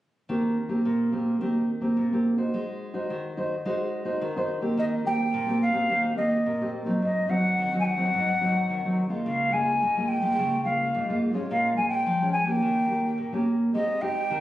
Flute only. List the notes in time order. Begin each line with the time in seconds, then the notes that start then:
4.79 D#5
5.06 G5
5.61 F5
6.17 D#5
7.03 D#5
7.29 F#5
7.80 G#5
7.85 F#5
9.26 F5
9.52 G#5
10.08 G5
10.64 F5
11.50 F5
11.77 G#5
11.88 G5
12.32 G#5
12.45 G5
13.74 D#5
14.01 G5